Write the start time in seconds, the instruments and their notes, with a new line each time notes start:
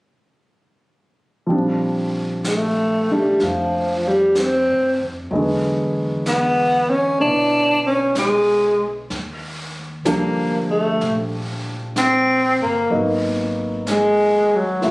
1.47 upright bass A#1, grand piano F3 G3 C4, brush sweep
1.51 grand piano D4
2.44 tenor saxophone A3, brush sweep, snare, hi-hat pedal
3.09 tenor saxophone G3, grand piano A3 D4
3.40 upright bass F2, tenor saxophone F3, brush sweep, snare
4.08 tenor saxophone G3
4.35 tenor saxophone C4, brush sweep, snare, hi-hat pedal
4.68 upright bass G2
5.00 upright bass F2
5.30 upright bass E2, grand piano F#3 G#3 B3, brush sweep
5.35 grand piano D3
6.26 tenor saxophone B3, brush sweep, snare, hi-hat pedal
6.90 tenor saxophone C#4
7.20 upright bass B1, grand piano B3 E4 C#5, tenor saxophone D4, brush sweep
7.86 tenor saxophone C#4
8.15 tenor saxophone G#3, brush sweep, snare, hi-hat pedal
9.10 upright bass D#2, brush sweep, snare
10.05 upright bass D2, grand piano F3 G3 D4 A4, tenor saxophone A#3, brush sweep, snare, hi-hat pedal
10.70 tenor saxophone A3
11.01 upright bass A#1, brush sweep, snare
11.96 tenor saxophone C4, brush sweep, snare, hi-hat pedal
12.61 upright bass G1, tenor saxophone A#3
12.90 upright bass G#1, grand piano F#3 A#3 B3 D#4, brush sweep
13.87 tenor saxophone G#3, brush sweep, snare, hi-hat pedal
14.55 tenor saxophone F#3
14.81 upright bass C#2, grand piano A3 B3 E4 F4, brush sweep, snare
14.88 tenor saxophone F3